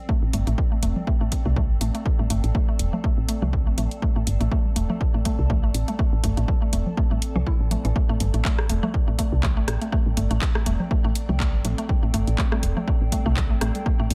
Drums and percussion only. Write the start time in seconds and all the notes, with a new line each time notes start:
0.09 kick
0.33 closed hi-hat, high conga
0.47 closed hi-hat
0.58 kick
0.83 closed hi-hat
0.96 high conga, low conga
1.07 kick
1.32 kick, closed hi-hat
1.56 kick, high conga, low conga
1.81 closed hi-hat
1.95 closed hi-hat
2.06 kick
2.19 high conga
2.30 closed hi-hat
2.44 closed hi-hat
2.55 kick
2.79 closed hi-hat, high conga
2.93 low conga
3.04 kick
3.29 closed hi-hat
3.42 high conga, low conga
3.53 kick
3.78 closed hi-hat, low conga
3.91 closed hi-hat
4.02 kick, high conga
4.27 closed hi-hat
4.41 closed hi-hat
4.51 kick
4.65 high conga
4.76 closed hi-hat
4.90 low conga
5.01 kick
5.25 kick, closed hi-hat, high conga
5.50 kick, low conga
5.74 closed hi-hat
5.88 closed hi-hat, high conga
5.99 kick
6.24 kick, closed hi-hat
6.37 closed hi-hat
6.48 kick, high conga
6.73 closed hi-hat
6.86 low conga
6.97 kick
7.11 high conga
7.22 closed hi-hat
7.36 low conga
7.47 kick
7.71 closed hi-hat, high conga, low conga
7.85 closed hi-hat
7.96 kick
8.20 closed hi-hat, high conga
8.34 closed hi-hat
8.45 kick, clap
8.59 cross-stick
8.69 closed hi-hat
8.83 high conga, low conga
8.94 kick
9.19 kick, closed hi-hat
9.43 kick, clap, high conga, low conga
9.68 cross-stick, closed hi-hat
9.82 closed hi-hat
9.92 kick
10.06 high conga
10.17 closed hi-hat
10.31 closed hi-hat
10.42 kick, clap
10.55 cross-stick
10.66 closed hi-hat, high conga
10.80 low conga
10.91 kick
11.15 closed hi-hat
11.29 high conga, low conga
11.40 kick, clap
11.65 closed hi-hat, low conga
11.78 closed hi-hat
11.89 kick, high conga
12.14 closed hi-hat
12.27 closed hi-hat
12.38 kick, clap
12.52 cross-stick, high conga
12.63 closed hi-hat
12.77 low conga
12.88 kick
13.12 kick, closed hi-hat, high conga
13.37 kick, clap, low conga
13.61 cross-stick, closed hi-hat
13.75 closed hi-hat, high conga
13.86 kick
14.10 closed hi-hat